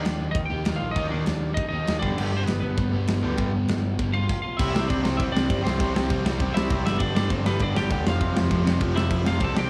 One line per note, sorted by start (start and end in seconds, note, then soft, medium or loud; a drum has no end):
0.00 0.49 D#3 loud
0.00 0.50 A#3 medium
0.00 0.33 D4 medium
0.00 0.49 D#4 medium
0.00 0.31 D5 loud
0.05 0.18 D#2 medium
0.05 snare loud
0.05 ride medium
0.20 0.34 D#2 medium
0.31 0.48 D#2 medium
0.31 0.36 D#5 loud
0.31 kick loud
0.35 0.41 D#4 medium
0.35 ride medium
0.45 0.75 G5 loud
0.50 0.63 D#2 medium
0.50 0.64 D#3 medium
0.50 0.65 A#3 medium
0.50 0.65 D#4 medium
0.50 0.79 G4 medium
0.65 0.80 D#2 medium
0.65 0.93 D#3 medium
0.65 0.95 A#3 medium
0.65 0.96 D#4 medium
0.65 snare loud
0.65 ride medium
0.76 0.94 F4 medium
0.76 0.94 F5 loud
0.80 0.94 A#1 medium
0.91 1.70 D#3 loud
0.91 1.07 D#5 loud
0.96 1.09 D#2 loud
0.96 1.71 A#3 loud
0.96 1.10 D#4 medium
0.96 1.69 D#4 loud
0.96 kick loud
0.96 ride medium
1.07 1.24 D#2 medium
1.07 1.23 D#3 medium
1.07 1.53 D4 medium
1.07 1.54 D5 medium
1.12 1.24 A#3 medium
1.12 1.24 D#4 loud
1.26 1.53 D#2 medium
1.26 snare loud
1.26 ride medium
1.54 1.84 D#2 loud
1.54 1.71 D#4 medium
1.54 1.67 D#5 loud
1.54 kick loud
1.54 ride medium
1.69 1.85 D#4 medium
1.69 2.00 D#4 medium
1.69 1.98 D#5 loud
1.73 1.85 D#3 medium
1.73 1.87 A#3 medium
1.86 2.04 D#2 medium
1.86 2.01 D#3 medium
1.86 2.02 A#3 medium
1.86 2.02 D#4 medium
1.86 snare loud
1.86 ride medium
1.99 2.16 G1 medium
1.99 2.75 G2 loud
1.99 2.38 D4 medium
1.99 2.40 D5 medium
1.99 kick medium
2.04 2.76 D3 medium
2.04 2.79 G3 loud
2.17 2.31 G1 loud
2.17 2.30 G2 medium
2.17 2.29 D3 loud
2.17 2.30 G3 loud
2.17 crash loud
2.33 2.46 G1 medium
2.33 2.44 C5 medium
2.40 2.46 C4 medium
2.40 2.59 B4 medium
2.46 2.61 G1 medium
2.46 2.61 B3 medium
2.46 snare loud
2.46 ride medium
2.60 2.76 G1 medium
2.60 4.25 B3 medium
2.60 4.24 B4 medium
2.76 2.91 G1 medium
2.76 2.92 G2 medium
2.76 2.92 D3 medium
2.76 2.92 G3 medium
2.76 kick loud
2.76 ride medium
2.92 3.06 G1 medium
2.92 3.21 G2 medium
2.92 3.23 D3 medium
2.92 3.22 G3 medium
3.07 3.22 G1 medium
3.07 snare loud
3.07 ride medium
3.22 3.37 D2 loud
3.22 3.96 G2 loud
3.22 3.98 D3 loud
3.22 3.99 G3 loud
3.37 3.52 G1 medium
3.37 3.50 G2 medium
3.37 3.50 D3 medium
3.37 3.51 G3 loud
3.37 kick loud
3.37 ride medium
3.53 3.67 G1 medium
3.68 3.95 G1 medium
3.68 snare loud
3.68 ride medium
3.97 4.26 G1 medium
3.97 4.12 G2 medium
3.97 4.13 D3 medium
3.97 4.12 G3 medium
3.97 kick loud
3.97 ride medium
4.13 4.29 G2 medium
4.13 4.29 D3 medium
4.13 4.28 G3 medium
4.13 4.42 F4 medium
4.13 4.41 F5 loud
4.29 kick loud
4.29 crash loud
4.42 4.58 F4 medium
4.42 4.59 F5 loud
4.57 4.72 C2 loud
4.57 4.74 C3 loud
4.57 4.73 G3 loud
4.57 4.73 C4 loud
4.57 4.72 E4 medium
4.57 4.69 E5 loud
4.57 kick loud
4.57 crash loud
4.57 crash medium
4.70 4.87 G3 medium
4.70 4.87 C4 loud
4.70 4.88 E4 medium
4.70 4.88 E5 loud
4.74 4.87 C2 loud
4.74 4.86 C3 medium
4.74 snare loud
4.87 5.02 C2 medium
4.87 5.02 C3 medium
4.87 5.03 G3 loud
4.87 5.01 C4 medium
4.87 5.04 D4 medium
4.87 5.02 D5 medium
4.87 kick loud
4.87 crash medium
5.02 5.17 C2 medium
5.02 5.18 C3 medium
5.02 5.20 G3 loud
5.02 5.19 C4 loud
5.02 5.19 C4 medium
5.02 5.19 C5 medium
5.02 snare loud
5.17 5.32 C2 loud
5.17 5.35 C3 medium
5.17 5.35 G3 medium
5.17 5.33 C4 medium
5.17 5.26 E4 medium
5.17 5.22 E5 loud
5.17 kick loud
5.17 crash medium
5.32 5.47 C2 loud
5.32 5.49 G3 medium
5.32 5.48 C4 medium
5.32 5.62 D4 medium
5.32 5.63 D5 loud
5.36 5.48 C3 medium
5.36 snare loud
5.49 5.62 G1 medium
5.49 5.65 C3 loud
5.49 5.65 G3 loud
5.49 5.63 C4 loud
5.49 kick loud
5.49 crash medium
5.64 5.76 C2 loud
5.64 5.79 C3 medium
5.64 5.80 G3 medium
5.64 5.79 C4 medium
5.64 5.94 C4 medium
5.64 5.92 C5 medium
5.64 snare loud
5.80 5.92 C2 loud
5.80 5.94 C3 medium
5.80 5.94 G3 loud
5.80 5.93 C4 loud
5.80 kick loud
5.80 crash medium
5.94 6.07 C2 medium
5.94 6.08 C3 medium
5.94 6.08 G3 medium
5.94 6.09 C4 medium
5.94 snare loud
6.09 6.22 C2 loud
6.09 6.25 C3 medium
6.09 6.24 G3 medium
6.09 6.23 C4 loud
6.09 kick loud
6.09 crash medium
6.24 6.36 C2 medium
6.24 6.39 C3 medium
6.24 6.39 G3 loud
6.24 6.40 C4 loud
6.24 snare loud
6.40 6.52 C2 loud
6.40 6.54 C3 medium
6.40 6.53 G3 medium
6.40 6.53 C4 loud
6.40 kick loud
6.40 crash medium
6.54 6.67 C2 medium
6.54 6.69 C3 medium
6.54 6.69 G3 medium
6.54 6.70 C4 loud
6.54 6.83 E4 medium
6.54 6.84 E5 loud
6.54 snare loud
6.70 6.83 C2 loud
6.70 6.84 C3 loud
6.70 6.84 G3 loud
6.70 6.85 C4 loud
6.70 kick loud
6.70 crash medium
6.84 6.97 G1 loud
6.84 7.00 G2 loud
6.84 6.99 D3 loud
6.84 6.98 G3 loud
6.84 7.00 E4 medium
6.84 7.01 E5 loud
6.84 snare loud
6.99 7.13 G1 loud
6.99 7.14 G2 medium
6.99 7.15 D3 loud
6.99 7.15 G3 loud
6.99 7.14 D4 medium
6.99 7.14 D5 loud
6.99 kick loud
6.99 crash medium
7.15 7.28 G1 medium
7.15 7.30 G2 medium
7.15 7.30 D3 medium
7.15 7.29 G3 loud
7.15 7.29 D4 medium
7.15 7.30 D5 loud
7.15 snare loud
7.30 7.43 G1 loud
7.30 7.45 G2 medium
7.30 7.46 D3 medium
7.30 7.46 G3 medium
7.30 7.45 C4 medium
7.30 7.46 C5 medium
7.30 kick loud
7.30 crash medium
7.45 7.58 G1 medium
7.45 7.60 G2 medium
7.45 7.60 D3 loud
7.45 7.59 G3 loud
7.45 7.60 B3 medium
7.45 7.63 B4 loud
7.45 snare loud
7.59 7.72 G1 loud
7.59 7.74 G2 medium
7.59 7.75 D3 medium
7.59 7.75 G3 medium
7.59 7.75 D4 medium
7.59 7.77 D5 loud
7.59 kick loud
7.59 crash medium
7.76 7.88 G1 loud
7.76 7.91 G2 medium
7.76 7.91 D3 medium
7.76 7.90 G3 medium
7.76 7.90 G4 medium
7.76 7.91 G5 loud
7.76 snare loud
7.91 8.03 D2 medium
7.91 8.05 G2 loud
7.91 8.05 D3 loud
7.91 8.05 G3 loud
7.91 8.05 G4 medium
7.91 8.05 G5 medium
7.91 kick loud
7.91 crash medium
8.05 8.17 F1 loud
8.05 8.21 F2 loud
8.05 8.20 C3 loud
8.05 8.19 F3 loud
8.05 8.34 F4 medium
8.05 snare loud
8.10 8.38 F5 loud
8.20 8.33 F1 loud
8.20 8.34 F2 medium
8.20 8.34 C3 loud
8.20 8.35 F3 loud
8.20 kick loud
8.20 crash medium
8.35 8.47 F1 medium
8.35 8.50 F2 loud
8.35 8.50 C3 loud
8.35 8.49 F3 loud
8.35 snare loud
8.50 8.63 F1 medium
8.50 8.65 F2 medium
8.50 8.66 C3 medium
8.50 8.66 F3 loud
8.50 kick loud
8.50 crash medium
8.64 8.77 F1 medium
8.64 8.79 F2 loud
8.64 8.79 C3 loud
8.64 8.78 F3 loud
8.64 snare loud
8.79 8.93 F1 loud
8.79 8.93 F2 medium
8.79 8.94 C3 medium
8.79 8.95 F3 loud
8.79 kick loud
8.79 crash medium
8.95 9.08 F1 medium
8.95 9.10 F2 medium
8.95 9.09 C3 medium
8.95 9.08 F3 loud
8.95 9.24 E4 medium
8.95 9.27 E5 medium
8.95 snare loud
9.09 9.23 F1 medium
9.09 9.24 F2 medium
9.09 9.24 C3 loud
9.09 9.25 F3 loud
9.09 kick loud
9.09 crash medium
9.25 9.38 F1 loud
9.25 9.39 F2 medium
9.25 9.40 C3 medium
9.25 9.40 F3 loud
9.25 9.40 F4 medium
9.25 9.42 F5 medium
9.25 snare loud
9.40 9.53 C2 loud
9.40 9.57 C3 loud
9.40 9.57 G3 loud
9.40 9.56 C4 loud
9.40 9.56 A4 medium
9.40 kick loud
9.40 crash medium
9.44 9.58 A5 loud
9.55 9.67 C2 medium
9.55 9.70 C3 medium
9.55 9.70 G3 medium
9.55 9.70 C4 medium
9.55 9.70 G4 medium
9.55 9.70 G5 medium
9.55 snare loud